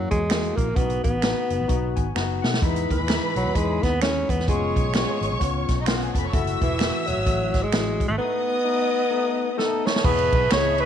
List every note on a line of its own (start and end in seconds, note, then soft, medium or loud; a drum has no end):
0.00 0.21 A#3 medium
0.00 0.21 E4 medium
0.00 0.21 F#4 medium
0.11 0.52 E2 medium
0.11 0.58 G#3 medium
0.11 kick medium
0.11 closed hi-hat medium
0.30 0.67 A#3 medium
0.30 0.68 E4 medium
0.30 0.67 F#4 medium
0.30 finger snap medium
0.30 snare loud
0.30 closed hi-hat loud
0.45 closed hi-hat soft
0.56 0.74 A#1 medium
0.56 0.77 A#3 medium
0.56 kick medium
0.56 closed hi-hat medium
0.76 1.00 B1 loud
0.76 1.13 B3 medium
0.76 1.03 B3 loud
0.76 0.83 C#4 soft
0.76 1.14 F#4 medium
0.76 kick loud
0.76 closed hi-hat medium
0.81 1.16 D#4 medium
0.90 closed hi-hat soft
1.04 1.32 A1 medium
1.04 1.93 B3 medium
1.04 kick medium
1.04 closed hi-hat medium
1.22 1.60 B3 medium
1.22 1.60 D#4 medium
1.22 1.61 F#4 medium
1.22 finger snap medium
1.22 snare loud
1.22 closed hi-hat medium
1.50 1.58 F#1 medium
1.50 closed hi-hat medium
1.60 1.68 A1 medium
1.68 1.93 B1 medium
1.68 2.06 B3 medium
1.68 2.06 D#4 medium
1.68 2.06 F#4 medium
1.68 kick medium
1.68 closed hi-hat medium
1.96 2.13 G#1 medium
1.96 2.14 G#5 medium
1.96 kick medium
1.96 closed hi-hat medium
2.15 2.40 F#1 medium
2.15 2.53 B3 medium
2.15 2.53 D#4 medium
2.15 2.53 F#4 medium
2.15 2.41 F#5 medium
2.15 finger snap loud
2.15 snare medium
2.42 2.60 B2 medium
2.42 2.60 F#5 medium
2.42 snare medium
2.54 snare medium
2.61 2.86 E2 medium
2.61 2.99 G#3 medium
2.61 3.00 D#4 medium
2.61 3.00 E4 medium
2.61 4.26 B4 loud
2.61 4.26 B5 loud
2.61 kick loud
2.61 closed hi-hat medium
2.76 closed hi-hat medium
2.90 3.18 D#2 medium
2.90 3.33 E3 medium
2.90 kick medium
2.90 closed hi-hat medium
3.07 3.46 G#3 medium
3.07 3.46 D#4 medium
3.07 3.46 E4 medium
3.07 finger snap medium
3.07 snare loud
3.07 closed hi-hat medium
3.36 3.44 B1 medium
3.36 3.57 F#3 medium
3.36 closed hi-hat medium
3.45 3.54 D#2 medium
3.54 3.79 E2 medium
3.54 3.92 G#3 medium
3.54 3.85 G#3 medium
3.54 3.93 D#4 medium
3.54 3.93 E4 medium
3.54 kick medium
3.54 closed hi-hat medium
3.83 4.23 D#2 medium
3.83 4.01 B3 loud
3.83 kick medium
3.83 snare soft
3.83 closed hi-hat medium
4.02 4.39 G#3 medium
4.02 4.31 C#4 loud
4.02 4.39 D#4 medium
4.02 4.40 E4 medium
4.02 finger snap loud
4.02 snare loud
4.02 closed hi-hat medium
4.29 4.45 E2 medium
4.29 4.48 B3 medium
4.29 kick medium
4.29 closed hi-hat medium
4.40 snare soft
4.48 4.72 F1 loud
4.48 4.92 G#3 medium
4.48 4.86 B3 medium
4.48 4.86 C#4 medium
4.48 4.86 F4 medium
4.48 5.75 C#5 medium
4.48 5.75 C#6 loud
4.48 kick loud
4.48 closed hi-hat medium
4.76 5.04 B1 loud
4.76 kick medium
4.76 closed hi-hat medium
4.93 5.38 G#3 medium
4.93 5.32 B3 medium
4.93 5.31 C#4 medium
4.93 5.31 F4 medium
4.93 finger snap medium
4.93 snare loud
4.93 closed hi-hat medium
5.21 5.29 G#1 loud
5.21 closed hi-hat medium
5.31 5.39 B1 medium
5.40 5.65 C#2 medium
5.40 5.78 B3 medium
5.40 5.78 C#4 medium
5.40 5.78 F4 medium
5.40 kick medium
5.40 closed hi-hat medium
5.68 6.09 B1 medium
5.68 kick medium
5.68 snare soft
5.68 closed hi-hat medium
5.81 5.87 D#4 medium
5.81 5.87 D#5 medium
5.86 6.24 B3 medium
5.86 6.25 C#4 medium
5.86 5.96 F4 medium
5.86 6.25 F4 medium
5.86 5.97 F5 medium
5.86 finger snap loud
5.86 snare loud
5.86 closed hi-hat loud
5.97 6.03 F#4 medium
5.97 6.03 F#5 medium
6.02 6.15 G#4 medium
6.02 6.15 G#5 medium
6.02 closed hi-hat soft
6.14 6.31 F1 medium
6.14 6.18 A4 medium
6.14 6.27 B4 medium
6.14 6.18 A5 medium
6.14 6.27 B5 medium
6.14 kick medium
6.14 closed hi-hat medium
6.25 6.32 C#5 medium
6.25 6.32 C#6 medium
6.32 6.57 F#1 loud
6.32 6.71 A3 medium
6.32 6.71 E4 medium
6.32 6.72 F#4 medium
6.32 7.96 E5 loud
6.32 7.96 E6 loud
6.32 kick loud
6.32 closed hi-hat medium
6.47 closed hi-hat medium
6.62 6.90 E1 medium
6.62 7.09 E3 medium
6.62 kick medium
6.62 closed hi-hat medium
6.79 7.17 A3 medium
6.79 7.17 E4 medium
6.79 7.18 F#4 medium
6.79 finger snap medium
6.79 snare loud
6.79 closed hi-hat medium
7.07 7.16 E1 medium
7.07 7.64 F#3 medium
7.07 closed hi-hat medium
7.17 7.25 G#1 medium
7.26 7.51 A1 medium
7.26 7.64 A3 medium
7.26 7.64 E4 medium
7.26 7.64 F#4 medium
7.26 kick medium
7.26 closed hi-hat medium
7.54 7.70 G#1 medium
7.54 kick medium
7.54 snare soft
7.54 closed hi-hat medium
7.63 8.08 G#3 medium
7.72 8.05 A1 medium
7.72 8.10 F#3 medium
7.72 8.10 E4 medium
7.72 8.10 F#4 medium
7.72 finger snap loud
7.72 snare loud
7.72 closed hi-hat loud
8.00 kick medium
8.00 closed hi-hat medium
8.08 8.18 G#1 medium
8.08 8.17 A3 medium
8.18 8.56 A3 medium
8.18 9.53 B3 loud
8.18 8.57 B3 medium
8.18 8.57 D#4 medium
8.18 9.82 D#5 medium
8.18 9.82 D#6 loud
8.64 9.02 A3 medium
8.64 9.03 B3 medium
8.64 9.03 D#4 medium
9.10 9.48 A3 medium
9.10 9.49 B3 medium
9.10 9.49 D#4 medium
9.57 9.95 A3 medium
9.57 9.96 B3 medium
9.57 9.95 D#4 medium
9.57 9.87 A4 medium
9.57 9.84 A5 medium
9.57 snare medium
9.86 10.07 C#5 medium
9.86 10.05 C#6 medium
9.86 snare medium
9.96 snare medium
10.03 10.28 E1 loud
10.03 10.42 B3 medium
10.03 10.42 E4 medium
10.03 10.85 G#4 medium
10.03 10.42 G#4 medium
10.03 10.51 B4 loud
10.03 10.42 D#5 medium
10.03 10.85 E5 medium
10.03 10.85 B5 medium
10.03 10.51 B5 medium
10.03 kick loud
10.03 crash medium
10.18 ride soft
10.33 10.49 B1 medium
10.33 kick medium
10.33 ride medium
10.51 10.83 C#2 medium
10.51 10.85 B3 medium
10.51 10.85 E4 medium
10.51 10.57 G4 medium
10.51 10.82 C#5 loud
10.51 10.85 D#5 medium
10.51 10.77 C#6 medium
10.51 finger snap medium
10.51 snare loud
10.51 ride medium
10.57 10.85 G#4 medium
10.78 10.85 B4 loud
10.78 10.85 B5 medium
10.78 ride soft